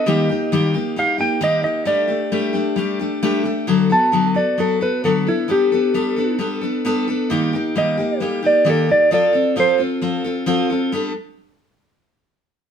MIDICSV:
0, 0, Header, 1, 3, 480
1, 0, Start_track
1, 0, Tempo, 453172
1, 62, Time_signature, 4, 2, 24, 8
1, 13461, End_track
2, 0, Start_track
2, 0, Title_t, "Electric slide guitar"
2, 0, Program_c, 0, 29
2, 0, Note_on_c, 0, 75, 82
2, 792, Note_off_c, 0, 75, 0
2, 1049, Note_on_c, 0, 77, 97
2, 1273, Note_off_c, 0, 77, 0
2, 1278, Note_on_c, 0, 79, 111
2, 1493, Note_off_c, 0, 79, 0
2, 1521, Note_on_c, 0, 75, 91
2, 1725, Note_off_c, 0, 75, 0
2, 1738, Note_on_c, 0, 75, 91
2, 1962, Note_off_c, 0, 75, 0
2, 1982, Note_on_c, 0, 74, 77
2, 3378, Note_off_c, 0, 74, 0
2, 4155, Note_on_c, 0, 81, 85
2, 4613, Note_off_c, 0, 81, 0
2, 4621, Note_on_c, 0, 74, 74
2, 4853, Note_off_c, 0, 74, 0
2, 4875, Note_on_c, 0, 69, 88
2, 5100, Note_off_c, 0, 69, 0
2, 5111, Note_on_c, 0, 71, 77
2, 5338, Note_off_c, 0, 71, 0
2, 5349, Note_on_c, 0, 69, 76
2, 5578, Note_off_c, 0, 69, 0
2, 5598, Note_on_c, 0, 64, 78
2, 5822, Note_off_c, 0, 64, 0
2, 5840, Note_on_c, 0, 67, 89
2, 6763, Note_off_c, 0, 67, 0
2, 8242, Note_on_c, 0, 75, 88
2, 8715, Note_off_c, 0, 75, 0
2, 8715, Note_on_c, 0, 69, 88
2, 8942, Note_off_c, 0, 69, 0
2, 8966, Note_on_c, 0, 74, 98
2, 9188, Note_off_c, 0, 74, 0
2, 9213, Note_on_c, 0, 69, 84
2, 9431, Note_off_c, 0, 69, 0
2, 9443, Note_on_c, 0, 74, 92
2, 9667, Note_off_c, 0, 74, 0
2, 9681, Note_on_c, 0, 74, 85
2, 10139, Note_off_c, 0, 74, 0
2, 10166, Note_on_c, 0, 72, 93
2, 10389, Note_off_c, 0, 72, 0
2, 13461, End_track
3, 0, Start_track
3, 0, Title_t, "Steel-string acoustic guitar"
3, 0, Program_c, 1, 25
3, 65, Note_on_c, 1, 51, 85
3, 70, Note_on_c, 1, 55, 93
3, 73, Note_on_c, 1, 58, 76
3, 81, Note_on_c, 1, 63, 96
3, 86, Note_on_c, 1, 67, 92
3, 298, Note_off_c, 1, 67, 0
3, 303, Note_off_c, 1, 51, 0
3, 306, Note_off_c, 1, 55, 0
3, 307, Note_off_c, 1, 58, 0
3, 311, Note_on_c, 1, 67, 63
3, 312, Note_off_c, 1, 63, 0
3, 331, Note_on_c, 1, 63, 47
3, 334, Note_on_c, 1, 58, 46
3, 546, Note_off_c, 1, 67, 0
3, 548, Note_off_c, 1, 58, 0
3, 548, Note_off_c, 1, 63, 0
3, 551, Note_on_c, 1, 51, 84
3, 559, Note_on_c, 1, 55, 91
3, 561, Note_on_c, 1, 58, 89
3, 561, Note_on_c, 1, 63, 96
3, 565, Note_on_c, 1, 67, 96
3, 771, Note_off_c, 1, 67, 0
3, 783, Note_on_c, 1, 67, 63
3, 786, Note_off_c, 1, 51, 0
3, 788, Note_off_c, 1, 63, 0
3, 790, Note_off_c, 1, 55, 0
3, 791, Note_off_c, 1, 58, 0
3, 801, Note_on_c, 1, 63, 55
3, 811, Note_on_c, 1, 58, 49
3, 1018, Note_off_c, 1, 58, 0
3, 1020, Note_on_c, 1, 55, 57
3, 1022, Note_off_c, 1, 67, 0
3, 1028, Note_off_c, 1, 63, 0
3, 1030, Note_on_c, 1, 58, 65
3, 1039, Note_on_c, 1, 67, 71
3, 1041, Note_on_c, 1, 63, 65
3, 1237, Note_off_c, 1, 67, 0
3, 1250, Note_on_c, 1, 67, 54
3, 1257, Note_off_c, 1, 63, 0
3, 1261, Note_off_c, 1, 55, 0
3, 1266, Note_off_c, 1, 58, 0
3, 1270, Note_on_c, 1, 63, 52
3, 1280, Note_on_c, 1, 58, 44
3, 1486, Note_off_c, 1, 58, 0
3, 1490, Note_on_c, 1, 51, 94
3, 1491, Note_on_c, 1, 55, 84
3, 1492, Note_off_c, 1, 63, 0
3, 1493, Note_off_c, 1, 67, 0
3, 1498, Note_on_c, 1, 58, 92
3, 1504, Note_on_c, 1, 63, 83
3, 1506, Note_on_c, 1, 67, 98
3, 1714, Note_off_c, 1, 67, 0
3, 1727, Note_on_c, 1, 67, 48
3, 1731, Note_off_c, 1, 63, 0
3, 1735, Note_off_c, 1, 51, 0
3, 1736, Note_off_c, 1, 55, 0
3, 1739, Note_off_c, 1, 58, 0
3, 1743, Note_on_c, 1, 63, 53
3, 1760, Note_on_c, 1, 58, 46
3, 1962, Note_off_c, 1, 58, 0
3, 1963, Note_on_c, 1, 55, 88
3, 1966, Note_on_c, 1, 57, 74
3, 1971, Note_off_c, 1, 63, 0
3, 1971, Note_off_c, 1, 67, 0
3, 1975, Note_on_c, 1, 62, 93
3, 1983, Note_on_c, 1, 67, 77
3, 2187, Note_off_c, 1, 67, 0
3, 2198, Note_off_c, 1, 62, 0
3, 2199, Note_on_c, 1, 67, 58
3, 2211, Note_on_c, 1, 62, 56
3, 2212, Note_off_c, 1, 55, 0
3, 2213, Note_off_c, 1, 57, 0
3, 2224, Note_on_c, 1, 57, 48
3, 2443, Note_off_c, 1, 57, 0
3, 2448, Note_off_c, 1, 62, 0
3, 2450, Note_off_c, 1, 67, 0
3, 2454, Note_on_c, 1, 55, 84
3, 2456, Note_on_c, 1, 57, 74
3, 2461, Note_on_c, 1, 62, 75
3, 2465, Note_on_c, 1, 67, 87
3, 2665, Note_off_c, 1, 67, 0
3, 2678, Note_on_c, 1, 67, 59
3, 2683, Note_off_c, 1, 62, 0
3, 2693, Note_off_c, 1, 57, 0
3, 2695, Note_on_c, 1, 62, 62
3, 2697, Note_off_c, 1, 55, 0
3, 2706, Note_on_c, 1, 57, 49
3, 2922, Note_on_c, 1, 55, 69
3, 2926, Note_off_c, 1, 57, 0
3, 2929, Note_off_c, 1, 67, 0
3, 2932, Note_off_c, 1, 62, 0
3, 2939, Note_on_c, 1, 57, 79
3, 2944, Note_on_c, 1, 62, 86
3, 2952, Note_on_c, 1, 67, 88
3, 3159, Note_off_c, 1, 67, 0
3, 3171, Note_off_c, 1, 55, 0
3, 3172, Note_off_c, 1, 62, 0
3, 3172, Note_on_c, 1, 67, 59
3, 3179, Note_off_c, 1, 57, 0
3, 3185, Note_on_c, 1, 62, 58
3, 3196, Note_on_c, 1, 57, 54
3, 3405, Note_off_c, 1, 57, 0
3, 3411, Note_off_c, 1, 62, 0
3, 3416, Note_off_c, 1, 67, 0
3, 3416, Note_on_c, 1, 55, 89
3, 3418, Note_on_c, 1, 57, 94
3, 3424, Note_on_c, 1, 62, 100
3, 3433, Note_on_c, 1, 67, 98
3, 3624, Note_off_c, 1, 67, 0
3, 3637, Note_on_c, 1, 67, 51
3, 3644, Note_off_c, 1, 62, 0
3, 3651, Note_off_c, 1, 57, 0
3, 3657, Note_on_c, 1, 62, 54
3, 3658, Note_off_c, 1, 55, 0
3, 3664, Note_on_c, 1, 57, 50
3, 3888, Note_off_c, 1, 67, 0
3, 3889, Note_on_c, 1, 50, 80
3, 3894, Note_off_c, 1, 57, 0
3, 3894, Note_off_c, 1, 62, 0
3, 3894, Note_on_c, 1, 54, 94
3, 3898, Note_on_c, 1, 59, 92
3, 3898, Note_on_c, 1, 66, 91
3, 3905, Note_on_c, 1, 69, 96
3, 4115, Note_off_c, 1, 69, 0
3, 4127, Note_on_c, 1, 69, 55
3, 4128, Note_off_c, 1, 66, 0
3, 4134, Note_off_c, 1, 50, 0
3, 4137, Note_off_c, 1, 54, 0
3, 4139, Note_off_c, 1, 59, 0
3, 4141, Note_on_c, 1, 66, 53
3, 4151, Note_on_c, 1, 59, 43
3, 4362, Note_off_c, 1, 59, 0
3, 4364, Note_on_c, 1, 50, 71
3, 4367, Note_off_c, 1, 66, 0
3, 4370, Note_off_c, 1, 69, 0
3, 4375, Note_on_c, 1, 54, 71
3, 4375, Note_on_c, 1, 59, 78
3, 4379, Note_on_c, 1, 66, 74
3, 4383, Note_on_c, 1, 69, 79
3, 4589, Note_off_c, 1, 69, 0
3, 4600, Note_off_c, 1, 66, 0
3, 4602, Note_on_c, 1, 69, 52
3, 4609, Note_off_c, 1, 59, 0
3, 4612, Note_off_c, 1, 50, 0
3, 4613, Note_on_c, 1, 66, 45
3, 4617, Note_off_c, 1, 54, 0
3, 4622, Note_on_c, 1, 59, 43
3, 4840, Note_off_c, 1, 59, 0
3, 4847, Note_on_c, 1, 54, 62
3, 4849, Note_off_c, 1, 66, 0
3, 4851, Note_off_c, 1, 69, 0
3, 4852, Note_on_c, 1, 59, 63
3, 4861, Note_on_c, 1, 66, 66
3, 4871, Note_on_c, 1, 69, 70
3, 5080, Note_off_c, 1, 69, 0
3, 5093, Note_on_c, 1, 69, 61
3, 5094, Note_off_c, 1, 54, 0
3, 5094, Note_off_c, 1, 66, 0
3, 5096, Note_off_c, 1, 59, 0
3, 5107, Note_on_c, 1, 66, 48
3, 5116, Note_on_c, 1, 59, 44
3, 5336, Note_on_c, 1, 50, 77
3, 5337, Note_off_c, 1, 59, 0
3, 5337, Note_off_c, 1, 69, 0
3, 5339, Note_off_c, 1, 66, 0
3, 5345, Note_on_c, 1, 54, 73
3, 5349, Note_on_c, 1, 59, 81
3, 5352, Note_on_c, 1, 66, 89
3, 5356, Note_on_c, 1, 69, 79
3, 5565, Note_off_c, 1, 69, 0
3, 5578, Note_off_c, 1, 50, 0
3, 5578, Note_on_c, 1, 69, 49
3, 5581, Note_off_c, 1, 66, 0
3, 5583, Note_off_c, 1, 54, 0
3, 5585, Note_off_c, 1, 59, 0
3, 5585, Note_on_c, 1, 62, 44
3, 5597, Note_on_c, 1, 59, 41
3, 5799, Note_off_c, 1, 59, 0
3, 5804, Note_on_c, 1, 55, 66
3, 5806, Note_off_c, 1, 62, 0
3, 5811, Note_on_c, 1, 59, 67
3, 5812, Note_off_c, 1, 69, 0
3, 5818, Note_on_c, 1, 62, 78
3, 5824, Note_on_c, 1, 69, 80
3, 6043, Note_off_c, 1, 69, 0
3, 6052, Note_off_c, 1, 55, 0
3, 6056, Note_off_c, 1, 59, 0
3, 6056, Note_on_c, 1, 69, 55
3, 6060, Note_off_c, 1, 62, 0
3, 6074, Note_on_c, 1, 62, 55
3, 6079, Note_on_c, 1, 59, 50
3, 6286, Note_off_c, 1, 59, 0
3, 6289, Note_off_c, 1, 62, 0
3, 6294, Note_on_c, 1, 55, 78
3, 6296, Note_off_c, 1, 69, 0
3, 6299, Note_on_c, 1, 59, 73
3, 6302, Note_on_c, 1, 62, 75
3, 6309, Note_on_c, 1, 69, 80
3, 6515, Note_off_c, 1, 69, 0
3, 6528, Note_on_c, 1, 69, 52
3, 6533, Note_off_c, 1, 62, 0
3, 6538, Note_off_c, 1, 55, 0
3, 6540, Note_off_c, 1, 59, 0
3, 6546, Note_on_c, 1, 62, 57
3, 6554, Note_on_c, 1, 59, 52
3, 6759, Note_off_c, 1, 59, 0
3, 6763, Note_on_c, 1, 55, 71
3, 6768, Note_off_c, 1, 62, 0
3, 6772, Note_on_c, 1, 59, 73
3, 6775, Note_off_c, 1, 69, 0
3, 6781, Note_on_c, 1, 62, 77
3, 6788, Note_on_c, 1, 69, 80
3, 6991, Note_off_c, 1, 69, 0
3, 7004, Note_on_c, 1, 69, 54
3, 7009, Note_off_c, 1, 62, 0
3, 7013, Note_off_c, 1, 55, 0
3, 7017, Note_off_c, 1, 59, 0
3, 7022, Note_on_c, 1, 62, 55
3, 7027, Note_on_c, 1, 59, 50
3, 7248, Note_off_c, 1, 59, 0
3, 7252, Note_on_c, 1, 55, 94
3, 7253, Note_off_c, 1, 69, 0
3, 7254, Note_off_c, 1, 62, 0
3, 7261, Note_on_c, 1, 59, 93
3, 7267, Note_on_c, 1, 62, 95
3, 7270, Note_on_c, 1, 69, 111
3, 7481, Note_off_c, 1, 69, 0
3, 7494, Note_on_c, 1, 69, 56
3, 7497, Note_off_c, 1, 55, 0
3, 7497, Note_off_c, 1, 62, 0
3, 7502, Note_off_c, 1, 59, 0
3, 7510, Note_on_c, 1, 62, 53
3, 7520, Note_on_c, 1, 59, 40
3, 7729, Note_on_c, 1, 51, 96
3, 7733, Note_on_c, 1, 55, 80
3, 7737, Note_off_c, 1, 59, 0
3, 7738, Note_off_c, 1, 69, 0
3, 7739, Note_off_c, 1, 62, 0
3, 7742, Note_on_c, 1, 58, 83
3, 7742, Note_on_c, 1, 67, 98
3, 7743, Note_on_c, 1, 63, 101
3, 7963, Note_off_c, 1, 67, 0
3, 7976, Note_off_c, 1, 51, 0
3, 7976, Note_on_c, 1, 67, 67
3, 7978, Note_off_c, 1, 55, 0
3, 7982, Note_off_c, 1, 58, 0
3, 7983, Note_off_c, 1, 63, 0
3, 7995, Note_on_c, 1, 63, 58
3, 8004, Note_on_c, 1, 58, 57
3, 8204, Note_off_c, 1, 58, 0
3, 8211, Note_off_c, 1, 63, 0
3, 8212, Note_on_c, 1, 51, 66
3, 8214, Note_off_c, 1, 67, 0
3, 8214, Note_on_c, 1, 55, 75
3, 8217, Note_on_c, 1, 58, 73
3, 8223, Note_on_c, 1, 63, 74
3, 8226, Note_on_c, 1, 67, 86
3, 8433, Note_off_c, 1, 67, 0
3, 8446, Note_on_c, 1, 67, 59
3, 8455, Note_off_c, 1, 63, 0
3, 8458, Note_off_c, 1, 51, 0
3, 8459, Note_off_c, 1, 55, 0
3, 8460, Note_off_c, 1, 58, 0
3, 8468, Note_on_c, 1, 63, 50
3, 8476, Note_on_c, 1, 58, 45
3, 8680, Note_off_c, 1, 58, 0
3, 8687, Note_on_c, 1, 55, 65
3, 8690, Note_off_c, 1, 63, 0
3, 8693, Note_on_c, 1, 58, 66
3, 8694, Note_off_c, 1, 67, 0
3, 8702, Note_on_c, 1, 63, 72
3, 8708, Note_on_c, 1, 67, 74
3, 8911, Note_off_c, 1, 67, 0
3, 8924, Note_on_c, 1, 67, 60
3, 8925, Note_off_c, 1, 63, 0
3, 8935, Note_off_c, 1, 55, 0
3, 8937, Note_on_c, 1, 63, 52
3, 8938, Note_off_c, 1, 58, 0
3, 8954, Note_on_c, 1, 58, 46
3, 9158, Note_on_c, 1, 51, 86
3, 9159, Note_off_c, 1, 58, 0
3, 9162, Note_off_c, 1, 67, 0
3, 9164, Note_off_c, 1, 63, 0
3, 9167, Note_on_c, 1, 55, 73
3, 9172, Note_on_c, 1, 58, 84
3, 9174, Note_on_c, 1, 67, 87
3, 9177, Note_on_c, 1, 63, 84
3, 9401, Note_off_c, 1, 67, 0
3, 9411, Note_off_c, 1, 51, 0
3, 9414, Note_on_c, 1, 67, 45
3, 9415, Note_off_c, 1, 55, 0
3, 9415, Note_off_c, 1, 63, 0
3, 9418, Note_off_c, 1, 58, 0
3, 9428, Note_on_c, 1, 63, 41
3, 9439, Note_on_c, 1, 58, 43
3, 9649, Note_on_c, 1, 53, 79
3, 9653, Note_off_c, 1, 58, 0
3, 9657, Note_off_c, 1, 63, 0
3, 9657, Note_on_c, 1, 60, 75
3, 9659, Note_off_c, 1, 67, 0
3, 9662, Note_on_c, 1, 65, 82
3, 9664, Note_on_c, 1, 69, 85
3, 9866, Note_off_c, 1, 69, 0
3, 9879, Note_on_c, 1, 69, 55
3, 9884, Note_off_c, 1, 65, 0
3, 9890, Note_off_c, 1, 60, 0
3, 9896, Note_off_c, 1, 53, 0
3, 9897, Note_on_c, 1, 65, 49
3, 9903, Note_on_c, 1, 60, 52
3, 10120, Note_off_c, 1, 65, 0
3, 10121, Note_off_c, 1, 60, 0
3, 10124, Note_on_c, 1, 53, 75
3, 10129, Note_off_c, 1, 69, 0
3, 10133, Note_on_c, 1, 65, 88
3, 10134, Note_on_c, 1, 60, 83
3, 10141, Note_on_c, 1, 69, 82
3, 10345, Note_off_c, 1, 69, 0
3, 10357, Note_on_c, 1, 69, 57
3, 10359, Note_off_c, 1, 65, 0
3, 10369, Note_off_c, 1, 60, 0
3, 10372, Note_on_c, 1, 65, 53
3, 10374, Note_off_c, 1, 53, 0
3, 10382, Note_on_c, 1, 60, 47
3, 10603, Note_off_c, 1, 60, 0
3, 10607, Note_off_c, 1, 65, 0
3, 10608, Note_on_c, 1, 53, 63
3, 10611, Note_off_c, 1, 69, 0
3, 10616, Note_on_c, 1, 60, 80
3, 10620, Note_on_c, 1, 65, 72
3, 10629, Note_on_c, 1, 69, 72
3, 10838, Note_off_c, 1, 69, 0
3, 10851, Note_on_c, 1, 69, 64
3, 10852, Note_off_c, 1, 65, 0
3, 10856, Note_off_c, 1, 53, 0
3, 10860, Note_off_c, 1, 60, 0
3, 10864, Note_on_c, 1, 65, 59
3, 10877, Note_on_c, 1, 60, 52
3, 11076, Note_off_c, 1, 60, 0
3, 11082, Note_off_c, 1, 65, 0
3, 11082, Note_on_c, 1, 53, 95
3, 11084, Note_off_c, 1, 69, 0
3, 11088, Note_on_c, 1, 60, 94
3, 11095, Note_on_c, 1, 65, 109
3, 11097, Note_on_c, 1, 69, 88
3, 11317, Note_off_c, 1, 69, 0
3, 11330, Note_off_c, 1, 65, 0
3, 11330, Note_on_c, 1, 69, 56
3, 11334, Note_off_c, 1, 53, 0
3, 11337, Note_off_c, 1, 60, 0
3, 11343, Note_on_c, 1, 65, 48
3, 11357, Note_on_c, 1, 60, 49
3, 11569, Note_on_c, 1, 55, 78
3, 11575, Note_off_c, 1, 60, 0
3, 11578, Note_off_c, 1, 69, 0
3, 11580, Note_on_c, 1, 59, 82
3, 11584, Note_off_c, 1, 65, 0
3, 11589, Note_on_c, 1, 62, 74
3, 11595, Note_on_c, 1, 69, 85
3, 11769, Note_off_c, 1, 55, 0
3, 11775, Note_off_c, 1, 59, 0
3, 11779, Note_off_c, 1, 62, 0
3, 11782, Note_off_c, 1, 69, 0
3, 13461, End_track
0, 0, End_of_file